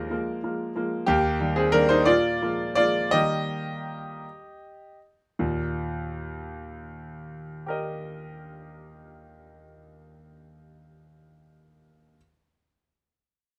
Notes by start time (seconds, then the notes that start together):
Already playing: D#2 F3 G#3 A#3 D4 A#4
0.10 F3 G#3 A#3
0.43 F3 G#3 A#3
0.75 F3 G#3 A#3
1.06 D#2 A#3 G4
1.40 D#3 G3 A#3
1.56 C4 G#4
1.72 D#3 G3 A#3 D4 A#4
1.89 D#4 C5
2.05 A#2 F4 D5
2.42 F3 G#3 A#3
2.75 F3 G#3 A#3 F4 D5
3.11 D#3 G3 A#3 G4 D#5
5.39 D#2 A#2
7.66 G4 A#4 D#5